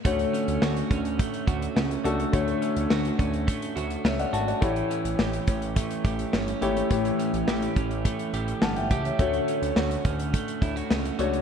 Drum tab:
HH |xxxx-xxxxxxx-xxx|xxxx-xxxxxxx-xxx|xxxx-xxxxxxx-xxx|xxxx-xxxxxxx-xxx|
SD |----o-------o---|----o-------o---|----o-------o---|----o-------o---|
BD |o-----o-o-o-----|o-----o-o-------|o-----o-o-o-----|o-----o-o-----o-|

HH |xxxx-xxxxxxx-xxx|
SD |----o-------o---|
BD |o-----o-o-o-----|